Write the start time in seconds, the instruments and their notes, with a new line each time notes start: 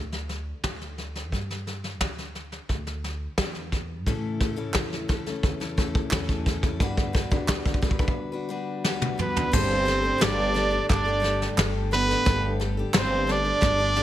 Already playing: upright bass D2, steel-string acoustic guitar D3
0.12 snare
0.29 snare
0.64 upright bass D2, kick, snare
0.81 snare
0.98 snare
1.15 snare
1.32 upright bass G2, kick, snare
1.50 snare
1.67 snare
1.84 snare
2.01 upright bass D2, kick, snare
2.18 snare
2.35 snare
2.52 snare
2.69 upright bass D2, kick, snare
2.87 snare
3.04 snare
3.38 upright bass E2, kick, snare
3.55 snare
3.72 kick, snare
4.06 upright bass A2, steel-string acoustic guitar A2 E3 A3 C#4 E4 A4, tonewheel organ C#3 E3 A3 E4, kick, snare
4.40 steel-string acoustic guitar A3 C#4 E4 A4, kick, snare
4.56 steel-string acoustic guitar A2 E3 A3 C#4 E4 A4
4.74 upright bass E2, kick, snare, clap
4.92 snare
5.08 steel-string acoustic guitar A3 C#4 E4 A4, kick, snare
5.26 steel-string acoustic guitar A3 C#4 E4 A4, snare
5.43 upright bass E2, kick, snare
5.60 steel-string acoustic guitar A3 C#4 E4 A4, snare
5.77 steel-string acoustic guitar A3 C#4 E4 A4, kick, snare
5.95 kick
6.11 upright bass E2, steel-string acoustic guitar A2 E3 A3 C#4, kick, snare, clap
6.15 steel-string acoustic guitar E4 A4
6.29 kick, snare
6.46 steel-string acoustic guitar A3 C#4 E4 A4, kick, snare
6.63 steel-string acoustic guitar C#4 E4 A4, kick, snare
6.67 steel-string acoustic guitar A3
6.78 upright bass G2, tonewheel organ D3 G3 B3 F#4, steel-string acoustic guitar G3 D4 F#4, kick, snare
6.82 steel-string acoustic guitar B4
6.97 kick, snare
7.13 steel-string acoustic guitar G3 D4 F#4 B4, kick, snare
7.31 steel-string acoustic guitar G3 D4 F#4 B4, kick
7.49 upright bass D2, kick, snare, clap
7.66 kick, snare
7.74 kick
7.82 steel-string acoustic guitar G3 D4 F#4 B4, kick, snare
7.91 kick
7.99 steel-string acoustic guitar D4 F#4 B4, kick
8.08 kick
8.32 steel-string acoustic guitar D4 F#4 B4
8.49 steel-string acoustic guitar G3 D4 F#4 B4
8.84 steel-string acoustic guitar G3 D4 F#4 B4, snare
9.02 high tom
9.18 steel-string acoustic guitar G3 D4 F#4 B4, fiddle B3, trumpet B4, mid tom
9.36 steel-string acoustic guitar D4 F#4 B4, floor tom
9.52 upright bass G1, tonewheel organ D3 G3 A3 G4, steel-string acoustic guitar G3 D4 G4 A4, fiddle C4, trumpet C5, kick, snare, crash
9.85 steel-string acoustic guitar G3 D4 G4 A4, snare
10.03 steel-string acoustic guitar D4 G4 A4
10.18 upright bass G1, steel-string acoustic guitar G3 D4 G4 A4, fiddle D4, snare
10.22 trumpet D5, clap
10.54 steel-string acoustic guitar G3 D4 G4 A4, snare
10.70 steel-string acoustic guitar D4 G4 A4
10.89 upright bass G1, fiddle D4, trumpet D5, kick, snare, clap
11.05 steel-string acoustic guitar D4 G4 A4
11.20 steel-string acoustic guitar G3 D4 G4 A4
11.24 snare
11.42 snare
11.57 upright bass G1, steel-string acoustic guitar G3 D4 G4 A4, snare, clap
11.91 steel-string acoustic guitar G3 D4 G4 A4, fiddle B3, trumpet B4, snare
12.08 steel-string acoustic guitar D4 G4 A4, snare
12.25 upright bass G1, steel-string acoustic guitar G3 D4 G4 A4, tonewheel organ A4, kick, snare
12.60 steel-string acoustic guitar G3 D4 G4 A4, snare
12.77 steel-string acoustic guitar D4 G4 A4
12.94 upright bass G1, steel-string acoustic guitar G3 D4 G4 A4, fiddle C4, trumpet C5, snare, clap
13.27 steel-string acoustic guitar G3 D4 G4 A4, fiddle D4, snare
13.32 trumpet D5
13.44 steel-string acoustic guitar D4 G4 A4
13.62 upright bass G1, kick, snare, clap
13.78 steel-string acoustic guitar D4 G4 A4
13.96 steel-string acoustic guitar G3 D4 G4 A4, snare